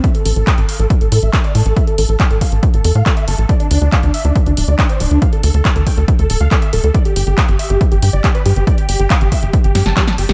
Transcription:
<<
  \new Staff \with { instrumentName = "Supersaw synth" } { \time 4/4 \key d \dorian \tempo 4 = 139 e''16 a'16 a'16 a'16 g''16 a'16 f''16 a'16 r16 a'16 a'16 e''16 a'16 d''16 a'16 a'16 | e''16 a'16 a'16 a'16 g''16 a'16 f''16 a'16 r16 a'16 a'16 f''16 a'16 e''16 a'16 a'16 | d''16 d'16 d'16 d'16 f''16 d'16 e''16 d'16 r16 d'16 d'16 d''16 d'16 c''16 d'16 d'16 | f''16 a'16 a'16 a'16 a''16 a'16 g''16 a'16 r16 a'16 a'16 f''16 a'16 e''16 a'16 a'16 |
d''16 g'16 g'16 g'16 f''16 g'16 e''16 g'16 r16 g'16 g'16 d''16 g'16 b'16 g'16 g'16 | d''16 g'16 g'16 g'16 f''16 g'16 e''16 g'16 r16 g'16 g'16 a''16 g'16 a''16 g'16 g'16 | }
  \new Staff \with { instrumentName = "Analog synth bass" } { \clef bass \time 4/4 \key d \dorian r8 a,,16 a,,16 r16 a,,16 r16 a,,16 r16 a,,16 a,16 a,,16 r8 a,16 a,,16 | r8 a,,16 a,,16 r16 a,,16 r16 a,,16 r16 a,,16 e,16 a,16 r8 g,,16 a,,16 | r8 d,16 d,16 r16 d,16 r16 d,16 r16 d,16 d,,16 d,16 r8 d,,16 d,16 | r8 d,16 d,16 r16 d,16 r16 d,16 r16 d,16 d,,16 d,16 r8 d,,16 d,16 |
r8 g,,16 g,,16 r16 g,,16 r16 g,,16 r16 g,,16 g,16 g,,16 r8 g,16 g,,16 | r8 g,,16 g,,16 r16 g,,16 r16 g,,16 r16 g,,16 g,16 g,,16 r8 g,,16 g,,16 | }
  \new DrumStaff \with { instrumentName = "Drums" } \drummode { \time 4/4 <hh bd>16 hh16 hho16 hh16 <hc hh bd>16 hh16 hho16 hh16 <hh bd>16 hh16 hho16 hh16 <hc hh bd>16 hh16 hho16 hh16 | <hh bd>16 hh16 hho16 hh16 <hc hh bd>16 hh16 <hho bd>16 hh16 <hh bd>16 hh16 hho16 hh16 <hc hh bd>16 hh16 hho16 hh16 | <hh bd>16 hh16 hho16 hh16 <hc hh bd>16 hh16 hho16 hh16 <hh bd>16 hh16 hho16 hh16 <hc hh bd>16 hh16 hho16 hh16 | <hh bd>16 hh16 hho16 hh16 <hc hh bd>16 hh16 <hho bd>16 hh16 <hh bd>16 hh16 hho16 hh16 <hc hh bd>16 hh16 hho16 hh16 |
<hh bd>16 hh16 hho16 hh16 <hc hh bd>16 hh16 hho16 hh16 <hh bd>16 hh16 hho8 <hc hh bd>16 hh16 hho16 hh16 | <hh bd>16 hh16 hho16 hh16 <hc hh bd>16 hh16 <hho bd>16 hh16 <hh bd>16 hh16 <hho sn>16 <hh sn>16 <hc hh bd sn>16 <hh sn>16 hho16 <hh sn>16 | }
>>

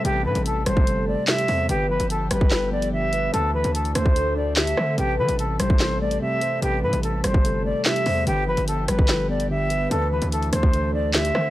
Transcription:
<<
  \new Staff \with { instrumentName = "Flute" } { \time 4/4 \key a \minor \tempo 4 = 146 g'8 b'8 a'8 c''4 d''8 e''4 | g'8 b'8 a'8 b'4 d''8 e''4 | a'8 b'8 a'8 c''4 d''8 e''4 | g'8 b'8 a'8 c''4 d''8 e''4 |
g'8 b'8 a'8 c''4 d''8 e''4 | g'8 b'8 a'8 b'4 d''8 e''4 | a'8 b'8 a'8 c''4 d''8 e''4 | }
  \new Staff \with { instrumentName = "Soft synth lead" } { \time 4/4 \key a \minor b'4 r4 a'4 g'8 c''8 | b'4 r4 a'4 g'8 b'8 | b'4 r4 a'4 g'8 c''8 | b'4 r4 a'4 g'8 c''8 |
b'4 r4 a'4 g'8 c''8 | b'4 r4 a'4 g'8 b'8 | b'4 r4 a'4 g'8 c''8 | }
  \new Staff \with { instrumentName = "String section" } { \time 4/4 \key a \minor << { a'1 | g'1 | a'1~ | a'1~ |
a'1 | g'1 | a'1 | } \\ { <g c'>1 | <f b>1 | <e d'>1 | <g c'>1~ |
<g c'>1 | <f b>1 | <e d'>1 | } >> }
  \new Staff \with { instrumentName = "Synth keys" } { \clef bass \time 4/4 \key a \minor <c a>8 e8 c8 g8 c8 a8 c4 | d8 f8 d8 g8 d8 b8 d4 | d8 e8 d8 a8 d8 d'8 d4 | c8 e8 c8 g8 c8 a8 c4 |
c8 e8 c8 g8 c8 a8 c4 | d8 f8 d8 g8 d8 b8 d4 | d8 e8 d8 a8 d8 d'8 d4 | }
  \new Staff \with { instrumentName = "808-style bass" } { \clef bass \time 4/4 \key a \minor a,,8 a,16 a,,8. g,,4~ g,,16 r8. e,8 | g,,8. g,,8. g,,2~ g,,8 | d,8. d,8. d,2 d8 | a,,8 e16 a,,8. a,,4. r4 |
a,,8 a,16 a,,8. g,,4~ g,,16 r8. e,8 | g,,8. g,,8. g,,2~ g,,8 | d,8. d,8. d,2 d8 | }
  \new DrumStaff \with { instrumentName = "Drums" } \drummode { \time 4/4 hh8. hh16 hh8 <hh ss>16 bd16 hh4 <hc sn>16 hh16 hho8 | hh8. hh16 hh8 <hh ss>16 bd16 <hc sn>8. hh16 r8 hh8 | hh8. hh16 hh16 hh16 <hh ss>16 bd16 hh4 <hc sn>16 hh16 ss8 | hh8. hh16 hh8 <hh ss>16 bd16 <hc sn>8. hh16 r8 hh8 |
hh8. hh16 hh8 <hh ss>16 bd16 hh4 <hc sn>16 hh16 hho8 | hh8. hh16 hh8 <hh ss>16 bd16 <hc sn>8. hh16 r8 hh8 | hh8. hh16 hh16 hh16 <hh ss>16 bd16 hh4 <hc sn>16 hh16 ss8 | }
>>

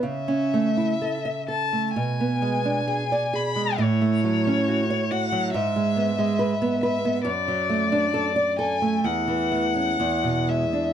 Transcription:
<<
  \new Staff \with { instrumentName = "Violin" } { \time 4/4 \key a \major \tempo 4 = 66 e''4. a''8 gis''4. b''8 | cis''4. fis''8 e''4. e''8 | d''4. gis''8 fis''4. e''8 | }
  \new Staff \with { instrumentName = "Nylon-string guitar" } { \time 4/4 \key a \major cis16 cis'16 a16 e'16 a'16 e''16 a'16 a16 b,16 b16 gis16 d'16 gis'16 d''16 gis'16 gis16 | a,16 a16 fis16 cis'16 fis'16 cis''16 fis'16 fis16 gis,16 gis16 b16 gis16 b'16 b16 b'16 b16 | fis,16 fis16 a16 d'16 a'16 d''16 a'16 a16 e,16 e16 a16 cis'16 e,16 b,16 gis16 d'16 | }
>>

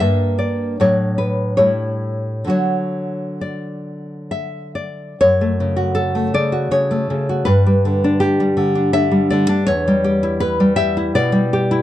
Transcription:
\new Staff \with { instrumentName = "Nylon-string guitar" } { \time 3/4 \key fis \phrygian \tempo 4 = 79 << { e''8 d''8 cis''8 b'8 cis''4 | cis''4 d''4 e''8 d''8 | cis''4 a'8 d''8 cis''4 | b'4 g'4 e''8 d''8 |
cis''4 b'8 e''8 d''4 | } \\ { <g, bes d'>4 <a, fis d'>4 <a, g e'>4 | <d fis fis'>2. | fis,16 a16 cis16 fis'8 a16 cis16 fis'16 cis16 a16 cis16 fis'16 | g,16 g16 d16 d'8 g16 d16 d'16 d16 g16 d16 d'16 |
e,16 g16 g'16 e'8 g16 g'16 e'16 b,16 g16 g'16 e'16 | } >> }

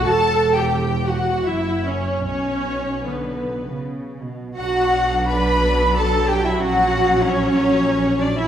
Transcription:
<<
  \new Staff \with { instrumentName = "Violin section" } { \time 3/4 \key b \minor \tempo 4 = 86 a''8. g''8. fis''8 e''8 cis''8 | cis''4 b'4 r4 | fis''4 b''4 a''8 g''16 e''16 | fis''4 cis''4. d''16 e''16 | }
  \new Staff \with { instrumentName = "Violin section" } { \time 3/4 \key b \minor a''8. g''8. fis''8 e''8 cis''8 | cis''4 b'4 r4 | fis''4 b''4 a''8 g''16 e''16 | fis''4 cis''4. d''16 e''16 | }
  \new Staff \with { instrumentName = "Cello section" } { \time 3/4 \key b \minor e,2 fis,4 | b,4 d8. cis8. b,8 | fis'4 b'4 a'8 g'16 e'16 | fis'4 cis'4. d'16 e'16 | }
  \new Staff \with { instrumentName = "Viola section" } { \time 3/4 \key b \minor << { a'8. g'8. fis'8 e'8 cis'8 | cis'4 b4 r4 | d'2. | cis'2. | } \\ { r2. | r2. | fis2.~ | fis2. | } >> }
  \new Staff \with { instrumentName = "Double bass section" } { \clef bass \time 3/4 \key b \minor e,,2 fis,,4 | b,,2~ b,,8 r8 | b,,2. | ais,,2. | }
>>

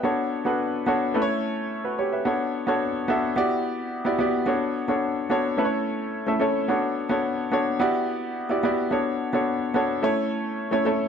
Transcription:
\new Staff \with { instrumentName = "Grand piano" } { \time 4/4 \key b \minor \tempo 4 = 108 << { <b' e''>16 r2. <fis' b'>16 <g' cis''>16 <b' e''>16~ | <b' e''>16 r2. r8. | r1 | r1 |
r1 | } \\ { <b d' fis' a' cis''>8 r16 <b d' fis' a' b'>8 r16 <b d' fis' a' cis''>8 <a cis' e' a' b' cis''>4 r4 | <b d' fis' a' cis''>8 r16 <b d' fis' a' cis''>8 r16 <b d' fis' a' e''>8 <b e' fis' g' d''>4 r16 <b e' fis' g' d''>16 <b e' fis' g' d''>16 r16 | <b d' fis' a' cis''>8 r16 <b d' fis' a' cis''>8 r16 <b d' fis' a' cis''>8 <a cis' e' a' b' cis''>4 r16 <a cis' e' a' e''>16 <a cis' e' a' cis''>16 r16 | <b d' fis' a' cis''>8 r16 <b d' fis' a' cis''>8 r16 <b d' fis' a' cis''>8 <b e' fis' g' d''>4 r16 <b e' fis' g' d''>16 <b e' fis' g' d''>16 r16 |
<b d' fis' a' cis''>8 r16 <b d' fis' a' cis''>8 r16 <b d' fis' a' cis''>8 <a cis' e' a' cis''>4 r16 <a cis' e' a' cis''>16 <a cis' e' a' cis''>16 r16 | } >> }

